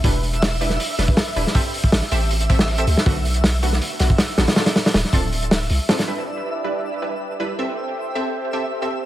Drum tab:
HH |o-oxo-o-o-o-o-o-|o-o-o-o-oxo-oxo-|o-oxo-o-o-o-o-oo|ooooo-o-oxo-o-oo|
SD |----o--o--o-o--o|----oo-----o---o|----o--o--o-o-oo|oooooo----o---oo|
BD |o----------o----|o--o------o-----|o----------o----|------o---------|

HH |----------------|----------------|
SD |----------------|----------------|
BD |----------------|----------------|